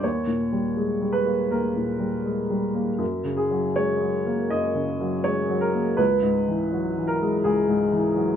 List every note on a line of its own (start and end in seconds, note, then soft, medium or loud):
0.04 1.47 D#2 soft
0.04 1.14 C#5 medium
0.27 0.66 A#2 soft
0.52 0.92 G3 soft
0.77 1.01 G#3 soft
1.01 1.41 G3 soft
1.12 1.50 B4 medium
1.26 1.66 A#3 soft
1.51 2.97 D#2 soft
1.51 2.63 A#4 soft
1.76 2.16 A#2 soft
1.99 2.40 G3 soft
2.25 2.50 G#3 soft
2.50 2.90 G3 soft
2.74 3.00 A#3 soft
2.98 4.47 F#2 soft
3.24 3.67 C#3 soft
3.37 3.77 G#4 soft
3.51 3.93 F#3 soft
3.76 4.02 G#3 soft
3.76 4.51 C#5 medium
4.01 4.42 F#3 soft
4.26 4.66 A#3 soft
4.50 5.95 F#2 soft
4.50 5.25 D#5 medium
4.75 5.15 C#3 soft
5.01 5.40 F#3 soft
5.24 5.50 G#3 soft
5.24 5.62 C#5 medium
5.49 5.89 F#3 soft
5.61 5.99 A#4 medium
5.74 5.99 A#3 soft
5.97 7.40 C#2 soft
5.97 7.08 B4 medium
6.22 6.62 G#2 soft
6.48 6.87 E3 soft
6.72 6.97 F#3 soft
6.98 7.36 E3 soft
7.07 7.44 A#4 medium
7.21 7.60 G#3 soft
7.44 8.36 C#2 soft
7.44 8.36 G#4 medium
7.69 8.07 G#2 soft
7.93 8.31 E3 soft
8.16 8.36 F#3 soft